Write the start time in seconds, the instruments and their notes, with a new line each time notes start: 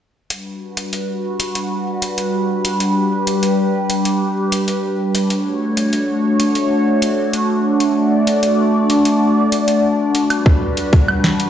0.30 analog synth pad G3 D4 F#4 B4, closed hi-hat
0.77 closed hi-hat
0.93 closed hi-hat
1.40 closed hi-hat
1.55 closed hi-hat
2.02 closed hi-hat
2.18 closed hi-hat
2.65 closed hi-hat
2.80 analog synth pad G4, closed hi-hat
3.27 closed hi-hat
3.43 closed hi-hat
3.90 closed hi-hat
4.05 closed hi-hat
4.52 closed hi-hat
4.68 closed hi-hat
5.15 closed hi-hat
5.30 analog synth pad A3 F#4 C#5, closed hi-hat
5.77 closed hi-hat
5.93 closed hi-hat
6.40 closed hi-hat
6.55 closed hi-hat
7.02 closed hi-hat
7.33 closed hi-hat
7.80 analog synth pad D5, closed hi-hat
8.27 closed hi-hat
8.43 closed hi-hat
8.90 closed hi-hat
9.05 closed hi-hat
9.52 closed hi-hat
9.68 closed hi-hat
10.15 closed hi-hat
10.30 analog synth pad G3 F#4 B4, closed hi-hat, high woodblock
10.46 kick
10.77 closed hi-hat
10.93 kick, closed hi-hat
11.08 high woodblock
11.24 snare
11.40 closed hi-hat